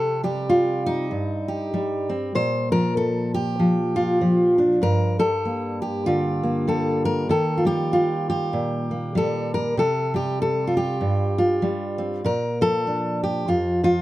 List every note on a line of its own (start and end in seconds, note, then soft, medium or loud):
0.00 1.11 C3 medium
0.00 0.24 A4 medium
0.24 1.73 G3 medium
0.24 1.11 G4 medium
0.49 0.86 F4 medium
0.86 2.10 D#4 medium
1.11 2.32 G2 medium
1.48 2.35 G4 medium
1.74 2.72 G3 medium
2.09 2.32 C4 soft
2.35 4.79 A#2 medium
2.35 2.71 C5 loud
2.72 3.58 F3 medium
2.72 2.97 A#4 loud
2.97 3.34 A4 medium
3.34 4.58 G4 medium
3.59 4.20 F3 medium
3.96 4.83 F4 medium
4.21 5.19 F3 medium
4.58 4.80 D4 soft
4.82 7.26 G2 medium
4.82 5.19 A#4 loud
5.19 6.67 G3 medium
5.19 5.81 A4 loud
5.45 6.42 A#3 soft
5.82 6.68 G4 medium
6.06 7.27 D3 medium
6.06 7.30 F4 medium
6.43 8.90 A#3 soft
6.67 7.34 G3 medium
6.67 7.05 A4 medium
7.05 7.30 A#4 medium
7.29 9.74 D#3 medium
7.29 7.66 A4 medium
7.58 7.91 F4 medium
7.65 9.15 G3 medium
7.65 8.28 G4 medium
7.93 8.91 F4 medium
8.30 9.16 G4 medium
8.53 9.74 A#2 medium
8.91 9.78 A#3 soft
9.15 9.82 G3 medium
9.15 9.53 A4 medium
9.54 9.78 A#4 medium
9.77 11.01 C3 medium
9.77 10.15 A4 medium
10.14 11.61 G3 medium
10.14 10.40 G4 medium
10.42 10.76 A4 medium
10.67 11.37 F4 medium
10.77 12.00 G4 medium
11.01 12.21 G2 medium
11.38 12.25 F4 medium
11.62 12.21 G3 medium
11.98 12.21 C4 soft
12.24 13.45 A#2 medium
12.24 12.61 A#4 medium
12.61 13.82 F3 medium
12.61 13.23 A4 medium
12.87 13.45 D4 soft
13.24 13.48 G4 medium
13.48 14.02 F2 medium
13.48 13.83 F4 medium
13.83 14.02 F3 medium
13.83 14.02 F4 medium